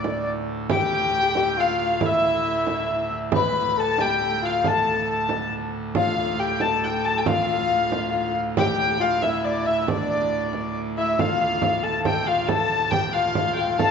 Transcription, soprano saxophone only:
0.71 G4
1.36 G4
1.58 F4
2.02 E4
3.34 B4
3.77 A4
4.00 G4
4.43 F4
4.65 A4
5.96 F4
6.19 F4
6.39 G4
6.61 A4
7.27 F4
8.13 F4
8.58 G4
9.00 F4
9.23 E4
9.87 D4
10.98 E4
11.19 F4
11.41 F4
11.84 A4
12.28 F4
12.50 A4
12.93 G4
13.14 F4
13.79 A4

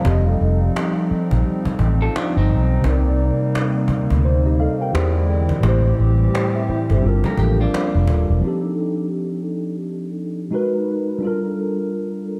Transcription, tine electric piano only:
Already playing: F5
0.02 F3 C4
0.06 G4 A4
0.10 D#5
2.81 C3 C4
2.85 D#4 A#4
2.89 D5
4.25 D#4 C5
4.46 G4 D#5
4.60 A4 F5
4.81 A#4 G5
4.92 E3 E4 G4 G#4 C5
4.97 D5
5.60 A2 A3
5.64 E4 G4
5.69 C5
6.34 G5
6.56 G4 E5
6.69 E4 C5
6.90 C4 A4
7.00 G3 D4
7.04 F4 A4
7.08 A#4
8.39 F3 C4 D4
8.44 D#4 G4 A4
10.51 G#3 D#4 F#4 A#4
10.55 B4
11.18 G3 D4
11.23 F4 A4
11.27 A#4

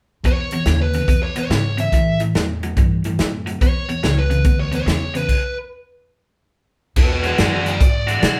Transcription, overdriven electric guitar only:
0.25 E2 B2
0.53 E2 B2
0.67 E2 C#3
0.95 E2 C#3
1.08 E2 B2
1.36 E2 B2
1.51 E2 C#3
1.77 E2 C#3
1.94 A2 E3
2.20 A2 E3
2.35 A2 F#3
2.63 A2 F#3
2.78 A2 E3
3.05 A2 E3
3.20 A2 F#3
3.46 A2 F#3
3.62 E2 B2
3.89 E2 B2
4.03 E2 C#3
4.30 E2 C#3
4.45 E2 B2
4.71 E2 B2
4.86 E2 C#3
5.14 E2 C#3
7.23 E3 G#3 D4 F#4
7.39 E3 G#3 D4 F#4
8.07 E3 G#3 D4 F#4
8.23 E3 G#3 D4 F#4

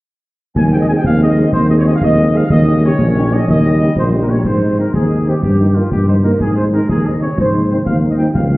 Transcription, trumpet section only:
0.56 G#5
0.73 G5
0.82 D#5
0.88 G#5
0.98 G5
1.05 F5
1.22 D#5
1.53 C5
1.70 D#5
1.79 C#5
1.87 D#5
1.96 F5
2.03 D#5
2.35 F5
2.52 D#5
2.85 C#5
3.33 D#5
3.50 D#5
3.98 C5
4.21 A#4
4.29 C#5
4.45 C5
4.79 A#4
4.95 G#4
5.28 G4
5.42 G4
5.74 F4
5.91 G4
6.08 C5
6.23 A#4
6.40 G#4
6.56 C5
6.73 A#4
6.89 G#4
7.05 D#5
7.22 C#5
7.39 C5
7.70 C5
7.85 F5
8.10 D#5
8.17 G5
8.34 F5

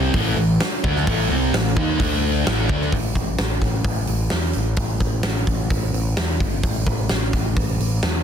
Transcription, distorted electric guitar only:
Already playing: C3 G3 C4
0.14 A2 E3 A3
0.38 A2 E3
0.84 D3 A3 D4
1.07 A2 E3 A3
1.30 C3 G3 C4
1.54 A2 E3
1.77 D#3 A#3 D#4
1.99 D3 A3 D4
2.46 A2 E3 A3
2.69 D3 A3 D4

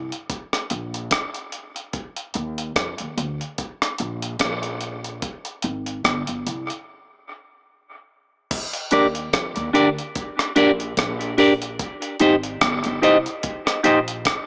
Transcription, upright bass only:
Already playing: C2
0.71 A#1
2.35 D#2
2.76 F2
3.00 D#2
3.17 D2
4.00 A#1
4.40 A#1
5.64 G#1
6.05 G1
6.29 G1
6.46 C2
8.93 D#2
9.34 F2
9.57 D#2
9.75 D2
10.57 A#1
10.98 A#1
12.21 G#1
12.62 G1
12.86 G1
13.03 C2
13.85 A#1

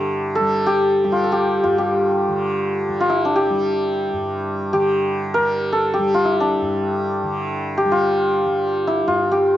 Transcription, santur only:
Already playing: D4 E4 G4 A4
0.35 A4
0.66 G4
1.04 G4
1.12 F4
1.24 A4
1.32 G4
1.64 F4
1.78 G4
3.00 F4
3.10 E4
3.25 D4
3.36 G4
4.73 G4
5.34 A#4
5.72 A4
5.94 G4
6.14 F4
6.25 E4
6.40 D4
7.78 G4
7.92 F4
8.87 E4
9.08 F4
9.32 G4

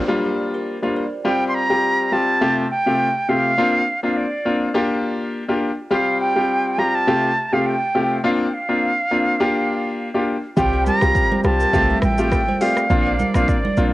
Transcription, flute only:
1.25 G5
1.48 C6
1.55 A#5
2.13 A5
2.71 G5
3.29 F5
4.04 F5
4.17 D5
5.92 F5
6.21 G5
6.79 A#5
6.95 A5
7.53 F5
7.66 G5
8.25 F5
8.47 G5
8.54 F5
10.57 G5
10.87 A#5
11.45 A5
12.03 G5
12.61 F5
13.36 F5
13.49 D5

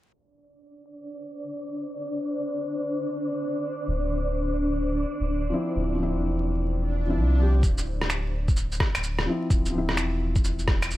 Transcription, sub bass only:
3.88 D1
5.20 D1
5.76 D1
6.14 E1
7.16 C2
8.95 D1
9.50 D1
9.89 E1

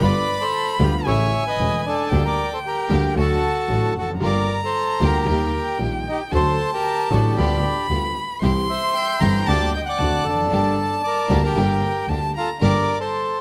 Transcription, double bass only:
0.01 G1
0.80 D2
1.07 A1
1.58 E1
2.12 D2
2.91 D2
3.17 D2
3.69 A1
3.96 F1
4.22 G1
5.01 D2
5.28 D#2
5.80 A#1
6.34 D2
7.11 A1
7.39 D2
7.89 D2
8.43 C2
9.22 G1
9.48 D2
10.00 D2
10.26 F1
10.52 G1
11.30 D2
11.56 G1
12.08 D2
12.63 G1

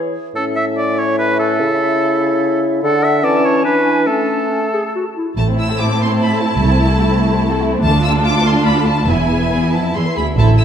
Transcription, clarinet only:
Already playing: E4
0.35 C#4
1.60 E4
2.83 D4
3.23 C#4
3.65 D4
4.06 C#4
4.50 C#4
4.74 G#4
4.96 F#4
5.17 E4

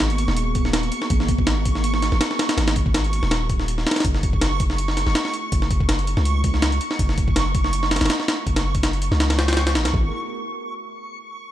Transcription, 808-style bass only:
Already playing: G#1
0.28 D#1
1.10 G#1
2.12 G#1
2.57 G#1
3.23 D#1
4.05 F#1
5.07 F#1
5.52 F#1
6.17 C#2
6.99 F#1
8.01 F#1
8.47 F#1
9.11 C#2
9.75 A1
9.85 C#2
9.94 G#1

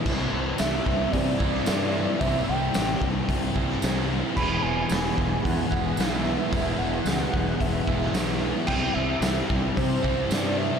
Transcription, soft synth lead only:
0.59 E5
1.12 D5
2.20 E5
2.48 G5
4.36 B5
4.62 G#5
5.43 F#5
5.97 E5
6.51 E5
6.78 F#5
7.33 F#5
7.61 E5
8.67 G5
8.94 E5
9.77 C5
10.32 D5
10.58 E5

